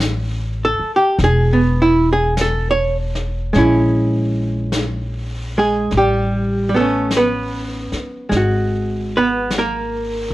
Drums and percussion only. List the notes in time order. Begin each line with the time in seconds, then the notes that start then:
0.00 brush sweep, snare, hi-hat pedal
1.18 brush sweep, snare
2.37 brush sweep, snare, hi-hat pedal
3.15 snare
3.54 brush sweep, snare
4.72 brush sweep, snare, hi-hat pedal
5.91 brush sweep, snare
7.11 brush sweep, snare, hi-hat pedal
7.92 snare
8.31 brush sweep, snare
9.50 brush sweep, snare, hi-hat pedal